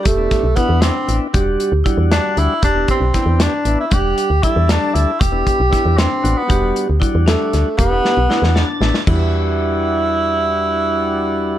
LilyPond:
<<
  \new Staff \with { instrumentName = "Vibraphone" } { \time 5/8 \key e \minor \tempo 4 = 116 g'4 e'8 d'4 | g'4 e'8 d'4 | g'4 e'8 d'4 | g'4 e'8 d'4 |
g'4 e'8 d'4 | g'4 e'8 d'4 | g'4 e'8 d'4 | <e' g' b' e''>2~ <e' g' b' e''>8~ |
<e' g' b' e''>2~ <e' g' b' e''>8 | }
  \new Staff \with { instrumentName = "Tenor saxophone" } { \time 5/8 \key e \minor a4 b8 c'8. r16 | r4. d'8 e'8 | d'8 c'4 d'8. e'16 | g'4 e'8 d'8 e'8 |
g'4. c'8. b16~ | b4 r8 a4 | b2 r8 | e'2~ e'8~ |
e'2~ e'8 | }
  \new Staff \with { instrumentName = "Tonewheel organ" } { \time 5/8 \key e \minor << { r2 r8 | r2 r8 | r2 r8 | r2 r8 |
r2 r8 | r2 r8 | r4. a''4 | r2 r8 |
r2 r8 | } \\ { r16 <b d' e'>8 r16 <b d' e'>8. r16 <b d' e'>8 | <g d' fis'>8. r16 <g d' fis'>4~ <g d' fis'>16 r16 | r16 <b d' e'>8 r16 <b d' g'>8. r16 <b d' e'>8 | <g d' fis''>8. r16 <g d' a'>4~ <g d' a'>16 r16 |
r16 <b d' e'>8 r16 <b d' e'>8. r16 <b d' fis'>8 | <g d' fis'>8. r16 <g d' fis'>4~ <g d' fis'>16 r16 | r16 <b d' e'>8 r16 <b d' fis'>8. r16 <b d' e'>8 | <g d' fis'>2~ <g d' fis'>8~ |
<g d' fis'>2~ <g d' fis'>8 | } >> }
  \new Staff \with { instrumentName = "FM bass" } { \clef bass \time 5/8 \key e \minor e,,8 r16 b,,16 r16 e,8 r16 a,,16 r16 | e,,8 r16 d,16 r16 e,8 r16 d,16 r16 | e,,8 r16 b,,16 r16 e,8 r16 a,,16 r16 | e,,8 r16 d,16 r16 e,8 r16 d,16 r16 |
e,,8 r16 b,,16 r16 e,8 r16 a,,16 r16 | e,,8 r16 d,16 r16 e,8 r16 d,16 r16 | e,,8 r16 b,,16 r16 e,8 r16 a,,16 r16 | e,2~ e,8~ |
e,2~ e,8 | }
  \new DrumStaff \with { instrumentName = "Drums" } \drummode { \time 5/8 <hh bd>8 <hh bd sn>8 <hh bd>8 <hh sn>8 hh8 | <hh bd>8 hh8 <hh bd>8 <hh sn>8 hh8 | <hh bd>8 <hh bd>8 <hh bd sn>8 <hh sn>8 hh8 | <hh bd>8 hh8 <hh bd>8 <hh sn>8 hh8 |
<hh bd>8 <hh bd>8 <hh bd sn>8 <hh sn>8 hh8 | <hh bd>8 hh8 <hh bd>8 <hh sn>8 <hh sn>8 | <hh bd>8 sn8 sn16 sn16 sn8 sn16 sn16 | <cymc bd>4. r4 |
r4. r4 | }
>>